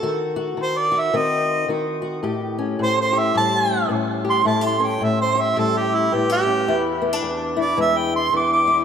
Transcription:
Already playing: A4
0.03 D#3 F#4
0.36 F#4
0.57 D#3
0.62 C5
0.78 D5
0.92 F#4
0.99 E5
1.13 D#3 C4 D#5
1.68 D#3 F#4
2.02 F#4
2.23 A2 G4
2.59 C#4
2.79 A2 C5
3.01 C5
3.13 G4
3.18 E5
3.34 A2 G3 A5
3.88 A2 C#4
4.25 G4
4.30 C6
4.45 A2 E4 A5
4.61 G4
4.67 C6
4.80 C#4
4.86 G5
5.01 A2 E5
5.21 C5
5.35 G4
5.41 E5
5.56 A2 G3 A4
5.77 G4
5.95 E4
6.12 A2 B3 G4
6.30 C#4 G4
6.46 C#4
6.68 E2 E4
7.02 B3
7.13 D4
7.22 E2
7.57 E4
7.61 D5
7.77 E2 G#3
7.81 E5
7.97 G5
8.16 C6
8.33 E2 D4 D6
8.53 D6
8.67 E4

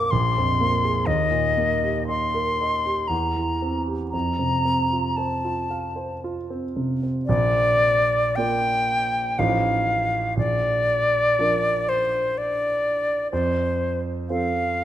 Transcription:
Already playing: A#1 F2 A#3 F4 A#4 D5 F5 D6
0.11 A#1 C6
0.38 F2
0.60 A#3
0.84 G#4
1.06 D#2 D#5
1.31 A#2
1.57 A#3
1.83 G4
2.08 D#5 C6
2.34 A#4
2.61 D#5
2.85 G4
3.08 E2 A#5
3.36 E3
3.62 C4
3.87 G4
4.11 F2 A#5
4.39 C3
4.65 C4
4.92 F4
5.17 C5 A5
5.45 F4
5.70 F5
5.96 C5
6.24 F4
6.50 C4
6.76 C3
7.03 C4
7.26 A#1 D5
8.36 A#3 F4 D5 G5
9.39 A1 F3 D#4 C5 F5
10.37 A#1 D5
11.39 F3 D4 A#4
11.89 C5
12.38 D5
13.32 F2 C5
14.30 F3 C4 A4 F5

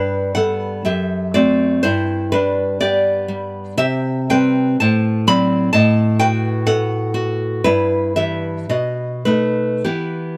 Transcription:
Already playing: G2 D4 B4
0.35 G3 B3 A4 F#5
0.85 F#2 G4 E5
1.34 A3 C4 F#4 D5
1.83 G2 E4 C5
2.32 G3 D4 B4
2.80 B3 G4 D5
3.28 G3
3.77 C3 G4 E5
4.30 G3 C4 B4 G5
4.80 A2 C5 A5
5.27 F#3 C4 D5 B5
5.73 A2 D#5 A5
6.19 F#4 B4 G5
6.66 B3 A4 F#5
7.14 F#4
7.64 G2 E4 B4
8.16 E3 B3 G4 E5
8.69 B2 F#4 D#5
9.25 A3 B3 D#4 B4
9.84 E3 B3 G4

